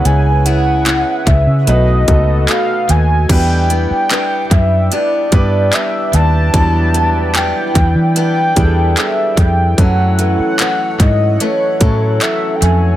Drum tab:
CC |--------|x-------|--------|--------|
HH |xxxxxxxx|xxxxxxxx|xxxxxxxx|xxxxxxxx|
CP |--x---x-|--x---x-|--x---x-|--x---x-|
BD |---o-o--|o--o-o--|o--o-o-o|o--o-o--|